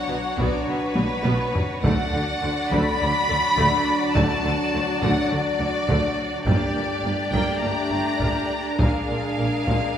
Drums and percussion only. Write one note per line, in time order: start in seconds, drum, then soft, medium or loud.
0.38 taiko medium
0.96 taiko high medium
1.25 taiko high medium
1.55 taiko low medium
1.84 taiko medium
2.72 taiko medium
3.58 taiko medium
4.15 taiko medium
5.02 taiko medium
5.89 taiko medium
6.47 taiko medium
7.33 taiko medium
8.21 taiko medium
8.79 taiko medium
9.67 taiko medium